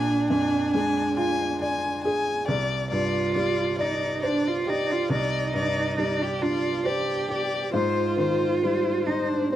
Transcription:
0.00 2.45 A#1 medium
0.00 2.05 D4 medium
0.00 0.29 G#5 medium
0.30 1.01 F2 soft
0.30 0.73 G#5 soft
0.74 1.45 G#3 soft
0.74 1.17 G#5 medium
1.17 1.88 F4 medium
1.17 1.61 G#5 medium
1.61 2.31 D5 medium
1.61 2.03 G#5 soft
2.04 2.49 G#4 medium
2.04 2.47 G#5 medium
2.48 5.08 C2 medium
2.48 2.90 D5 medium
2.90 3.62 G2 soft
2.90 3.82 F4 medium
2.90 3.33 D5 medium
3.34 4.06 G3 soft
3.34 3.78 D5 medium
3.78 4.26 D#4 medium
3.78 4.21 D5 medium
3.78 4.50 D5 soft
4.22 4.49 D4 medium
4.22 4.94 C5 medium
4.22 4.66 D5 soft
4.47 4.71 F4 medium
4.67 4.93 D#4 medium
4.67 5.37 G4 soft
4.67 5.10 D5 medium
4.91 5.12 F4 medium
5.10 7.68 C2 medium
5.10 6.23 D#4 medium
5.10 5.54 D5 medium
5.54 6.24 G2 soft
5.54 5.98 D5 medium
5.98 6.68 G3 soft
5.98 6.41 D5 soft
6.22 6.43 G4 medium
6.41 7.12 D4 soft
6.41 6.87 F4 medium
6.41 6.85 D5 medium
6.85 7.72 G4 medium
6.85 7.56 C5 soft
6.85 7.28 D5 soft
7.29 7.73 G4 soft
7.29 7.73 D5 soft
7.73 9.56 G#2 medium
7.73 9.08 F4 medium
7.73 8.17 C5 medium
8.17 8.89 D#3 soft
8.17 8.62 C5 soft
8.63 9.35 G3 soft
8.63 9.07 C5 soft
9.07 9.32 D#4 medium
9.07 9.56 D#4 soft
9.07 9.52 C5 soft
9.30 9.52 D4 medium
9.52 9.56 C4 medium
9.52 9.56 C5 soft

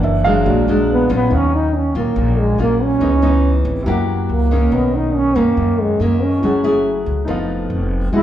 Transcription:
0.00 0.43 F#1 medium
0.00 0.44 F#2 medium
0.00 0.21 E3 medium
0.00 0.21 E3 soft
0.00 0.21 A#3 medium
0.00 0.22 A#3 soft
0.00 0.22 D4 medium
0.00 0.22 D4 soft
0.00 0.47 F#5 medium
0.04 0.24 E5 medium
0.24 0.64 F#3 medium
0.24 0.64 G#3 medium
0.24 0.64 D4 medium
0.24 0.64 F5 medium
0.45 1.06 A#1 loud
0.45 1.29 A#2 medium
0.45 1.27 F#3 soft
0.45 1.27 G#3 soft
0.45 1.27 D4 medium
0.68 1.07 F#3 medium
0.68 1.07 G#3 medium
0.68 1.07 D4 medium
0.93 1.11 B3 medium
1.09 1.29 A#1 medium
1.09 1.72 F#3 medium
1.09 1.72 C#4 medium
1.09 1.72 F4 medium
1.15 1.36 B3 loud
1.28 1.91 D#2 medium
1.28 2.14 D#3 medium
1.28 2.96 D#4 soft
1.28 2.98 C#5 soft
1.35 1.56 C#4 medium
1.35 3.00 F5 medium
1.55 1.77 D#4 medium
1.76 1.96 C#4 medium
1.95 2.15 A#1 medium
1.95 2.55 F#3 medium
1.95 2.41 A#3 medium
1.95 2.56 C#4 medium
1.95 2.56 F4 medium
2.16 2.56 A#1 loud
2.16 2.99 A#2 medium
2.39 2.60 G#3 medium
2.58 2.98 A#1 medium
2.58 2.98 F#3 medium
2.58 2.85 A#3 medium
2.58 2.98 C#4 medium
2.58 2.98 F4 medium
2.83 3.67 C#4 medium
2.98 3.61 C#2 medium
2.98 3.84 C#3 medium
2.98 3.13 E3 medium
2.98 3.14 B3 medium
2.98 3.83 C#4 medium
2.98 3.14 D#4 medium
3.02 3.85 B4 soft
3.02 3.86 D#5 medium
3.22 3.83 E3 medium
3.22 3.83 B3 medium
3.22 3.83 D#4 medium
3.65 3.85 G#1 loud
3.83 4.26 F#2 loud
3.83 4.51 F#3 medium
3.83 4.29 A#3 medium
3.83 4.68 E4 medium
3.83 4.69 G4 medium
3.83 4.69 A#4 medium
3.87 4.29 E4 medium
3.87 4.29 G4 medium
3.87 4.71 F#5 medium
4.29 4.69 C#2 medium
4.29 4.75 A#3 medium
4.51 5.32 D#3 medium
4.51 5.33 A#3 medium
4.51 5.33 C#4 medium
4.68 5.32 B1 medium
4.68 6.16 C#4 soft
4.68 6.17 A#4 soft
4.72 5.55 B2 medium
4.72 4.97 B3 medium
4.72 6.18 C#5 soft
4.72 6.19 D#5 medium
4.95 5.17 D#4 medium
5.16 5.39 C#4 loud
5.35 5.55 F#2 medium
5.35 5.96 D#3 medium
5.35 5.96 A#3 medium
5.35 5.82 A#3 medium
5.35 5.96 C#4 medium
5.57 5.97 F#2 medium
5.57 6.40 F#2 soft
5.81 6.05 G#3 medium
6.00 6.39 F#2 medium
6.00 6.39 D#3 medium
6.00 6.40 A#3 medium
6.00 6.25 A#3 medium
6.00 6.40 C#4 medium
6.19 6.41 C#4 soft
6.19 6.42 A#4 soft
6.19 6.42 B4 soft
6.19 6.43 D#5 soft
6.23 7.07 C#4 medium
6.39 7.02 F#1 medium
6.39 7.26 F#3 medium
6.39 6.60 A3 medium
6.39 7.24 E4 medium
6.39 7.25 G#4 soft
6.43 6.61 E4 medium
6.43 6.61 G#4 medium
6.43 7.27 F#5 medium
6.64 7.24 A3 medium
6.64 7.24 E4 medium
6.64 7.24 G#4 medium
7.06 7.26 C#2 medium
7.24 7.67 F1 loud
7.24 8.10 F3 medium
7.24 8.09 B3 medium
7.24 8.09 D#4 medium
7.24 8.10 A4 medium
7.29 8.11 B4 medium
7.29 8.12 F5 medium
7.70 8.09 F1 medium
8.11 8.23 E1 medium
8.11 8.23 E3 medium
8.11 8.23 G#3 medium
8.11 8.23 D#4 medium
8.11 8.23 E4 loud
8.11 8.23 F#4 medium
8.11 8.23 G#4 soft
8.11 8.23 D#5 soft
8.15 8.23 F#5 medium

